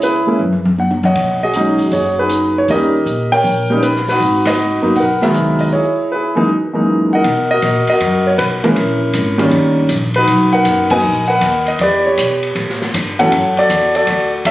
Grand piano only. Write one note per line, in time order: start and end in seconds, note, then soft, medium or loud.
0.03 0.27 E4 medium
0.03 0.38 G#4 medium
0.03 0.38 B4 medium
0.27 0.38 G#3 medium
0.27 0.38 A#3 soft
0.27 0.39 C#4 soft
0.27 0.39 E4 medium
0.80 0.85 F#5 medium
1.05 1.76 C#5 medium
1.05 1.42 D#5 medium
1.05 1.39 F#5 medium
1.43 1.92 F#4 medium
1.43 1.91 G#4 medium
1.43 1.89 D#5 medium
1.56 1.77 F#3 medium
1.56 1.78 G#3 medium
1.56 1.77 C#4 medium
1.56 1.78 D#4 medium
1.93 2.65 F#4 medium
1.93 2.19 G#4 medium
1.93 2.18 C#5 medium
2.19 2.66 D#4 medium
2.19 2.66 G#4 medium
2.19 2.57 B4 medium
2.58 2.69 C#5 medium
2.70 2.92 G3 medium
2.70 2.92 A#3 medium
2.70 2.92 C#4 medium
2.70 2.93 D#4 medium
2.70 3.42 G4 medium
2.70 3.32 A#4 medium
2.70 3.34 D#5 medium
3.32 4.04 A#4 medium
3.32 4.05 C#5 medium
3.32 3.84 G5 loud
3.70 3.81 G3 medium
3.70 3.82 A#3 medium
3.70 3.82 C#4 medium
3.70 3.82 D#4 medium
3.83 4.08 B4 medium
4.09 4.82 D#4 medium
4.09 4.47 F#4 medium
4.09 4.47 B4 medium
4.47 5.19 F#4 medium
4.47 4.99 B4 medium
4.47 4.82 D#5 medium
4.82 4.94 F#3 medium
4.82 4.94 A#3 medium
4.82 4.95 B3 medium
4.82 4.95 D#4 medium
4.97 5.23 A#4 medium
4.97 5.23 B4 medium
4.97 5.22 F#5 medium
5.22 5.71 D#3 medium
5.22 5.70 F#3 medium
5.22 5.70 G#3 medium
5.22 5.71 B3 medium
5.22 5.70 A#4 medium
5.22 5.70 B4 medium
5.22 5.61 E5 medium
5.61 5.73 D#5 medium
5.73 6.12 E4 medium
5.73 6.13 G#4 medium
5.73 6.12 C#5 medium
6.12 6.47 E4 soft
6.12 6.48 G#4 soft
6.12 6.46 B4 medium
6.35 6.47 F#2 medium
6.35 6.47 E3 medium
6.35 6.48 G#3 medium
6.35 6.47 A#3 medium
6.35 6.48 D#4 medium
6.73 7.22 F#2 soft
6.73 7.22 E3 soft
6.73 7.22 G#3 medium
6.73 7.22 A#3 medium
6.73 7.23 D#4 medium
7.13 7.52 A#4 medium
7.13 7.49 D#5 medium
7.13 7.48 F#5 medium
7.51 7.90 F#4 medium
7.51 7.90 A#4 medium
7.51 7.88 D#5 loud
7.90 8.62 F#4 medium
7.90 8.62 A#4 medium
7.90 8.24 D#5 medium
8.27 8.32 C#5 medium
8.38 8.44 B4 medium
8.64 8.75 E3 medium
8.64 8.76 G#3 medium
8.64 8.76 A#3 medium
8.64 9.38 C#4 medium
8.64 9.49 E4 medium
8.64 9.74 A#4 medium
9.38 9.87 D#3 medium
9.38 9.87 G3 medium
9.38 9.88 A#3 medium
9.38 9.88 C#4 medium
10.16 10.89 D#4 medium
10.16 10.89 F#4 medium
10.16 10.53 B4 medium
10.53 11.26 A#4 medium
10.53 10.91 B4 medium
10.53 10.92 F#5 loud
10.91 11.03 F#3 medium
10.91 11.03 A#3 medium
10.91 11.03 B3 medium
10.91 11.03 D#4 medium
10.91 11.28 B4 medium
10.91 11.64 D#5 medium
10.91 11.30 G#5 loud
11.28 11.76 A#4 medium
11.28 11.77 B4 medium
11.28 11.68 F#5 loud
11.68 11.80 D#5 medium
11.81 12.06 G4 medium
11.81 12.53 B4 medium
11.81 12.07 D5 medium
12.06 12.78 G4 medium
12.06 12.77 C#5 medium
13.19 13.31 E3 medium
13.19 13.31 F#3 medium
13.19 13.31 A3 medium
13.19 13.32 C#4 medium
13.19 13.58 A4 medium
13.19 13.92 C#5 medium
13.19 13.58 F#5 loud
13.59 13.95 F#4 medium
13.59 13.95 A4 medium
13.59 13.93 D5 loud
13.96 14.51 F#4 medium
13.96 14.45 A4 medium
13.96 14.31 D5 medium
14.46 14.51 A4 medium
14.46 14.51 C#5 medium
14.46 14.51 E5 medium